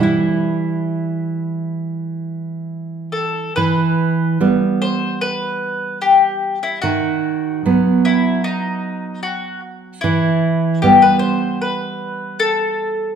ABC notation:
X:1
M:4/4
L:1/16
Q:1/4=74
K:Em
V:1 name="Mandolin"
E12- E2 A2 | B6 c2 B4 G3 E | F6 E2 ^D4 F2 z2 | E4 G B c2 B4 A4 |]
V:2 name="Nylon-string guitar" clef=bass
[E,G,E]16 | E,4 [G,B,]12 | ^D,4 [F,B,]12 | E,4 [G,B,]12 |]